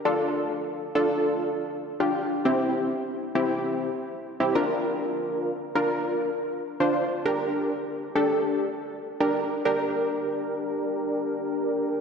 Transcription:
X:1
M:4/4
L:1/16
Q:1/4=100
K:Gdor
V:1 name="Analog polysynth"
[DFA]3 z3 [DFA]4 z3 [DFG]2 z | [CEG]3 z3 [CEG]4 z3 [CEG] [DFB]2- | [DFB]4 z2 [DFB]4 z3 [DFc]2 z | [DGB]3 z3 [DGA]4 z3 [DGB]2 z |
[DGB]16 |]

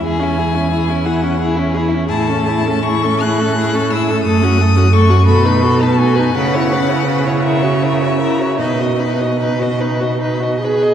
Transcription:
X:1
M:6/8
L:1/16
Q:3/8=56
K:C#m
V:1 name="Violin"
g6 f2 z4 | [K:Bmix] a4 c'2 f'4 e'2 | d'4 c'2 b3 a g2 | f6 e6 |
d6 z6 |]
V:2 name="Violin"
G E G E G E G E G E G E | [K:Bmix] G A G A G A G A G A G A | A F A F A F A B A B A B | B c B c B c ^A c A c A c |
B d B d B d B d B d B d |]
V:3 name="Viola"
E C E C E C E C E C E C | [K:Bmix] E C E C E C E C E C E C | A, C A, C A, C F D F D F D | C E C E C E E F E F E F |
D F D F D F D F D F G2 |]
V:4 name="Cello" clef=bass
E,,12 | [K:Bmix] A,,12 | F,,6 B,,6 | C,12 |
B,,8- B,,3 z |]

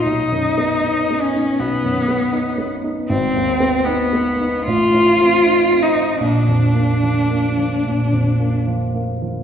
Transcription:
X:1
M:4/4
L:1/8
Q:1/4=77
K:Bbmix
V:1 name="Cello"
^D3 _D =B,3 z | C2 _C2 F3 E | D6 z2 |]
V:2 name="Grand piano"
(3=B,,, ^F,, =B, (3^D B, D (3B,,, F,, B, (3D B, D | (3A,,, E,, _C (3E C E (3=A,,, =A,, =C (3E C E | (3B,,, F,, B, (3F, B, F, (3B,,, F,, B, (3F, B, F, |]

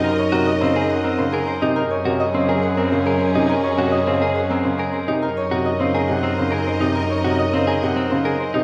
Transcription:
X:1
M:3/4
L:1/16
Q:1/4=104
K:Gblyd
V:1 name="Harp"
[ABcdeg] d B e c B g B c A c e | B d B e c B g B c A c e | B d B e c B g B c A c e | B d B e c B g B c A c e |
B d B e c B g B c A c e |]
V:2 name="Violin section"
[Be]8- [Be]3 z | [DA]12- | [DA]8- [DA]3 z | [Be]12- |
[Be]8- [Be]3 z |]
V:3 name="Clean electric guitar"
z2 G z C A z C z B z E | z2 G z C A z C z B z E | z2 G z C A z C z B z E | z2 G z C A z C z B z E |
z2 G z C A z C z B z E |]
V:4 name="French horn"
E8- E3 z | D12- | D8- D3 z | E12- |
E8- E3 z |]
V:5 name="Grand piano" clef=bass
z2 C, z D, z3 D, z2 C, | z2 C, z D, z3 D, z2 C, | z2 C, z D, z3 D, z2 C, | z2 C, z D, z C, z D, z2 C, |
z2 C, z D, z C, z D, z2 C, |]
V:6 name="Double bass section" clef=bass
G,,12 | G,,12- | G,,12 | G,,12- |
G,,12 |]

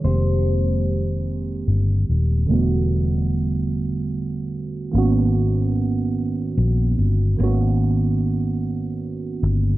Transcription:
X:1
M:6/8
L:1/8
Q:3/8=49
K:G#phr
V:1 name="Clean electric guitar"
=c4- c z | z6 | z6 | z6 |]
V:2 name="Tine electric piano"
[_E,=G,_A,_B,=C=G]6 | [=D,=G,A,B,F]6 | [D,^A,B,CF]6 | [D,^A,B,CF]6 |]
V:3 name="Fingered electric bass" clef=bass
=F,,,4 =G,,, _E,,, | E,,,6 | G,,,4 ^A,,, =G,,, | G,,,4- G,,, =G,,, |]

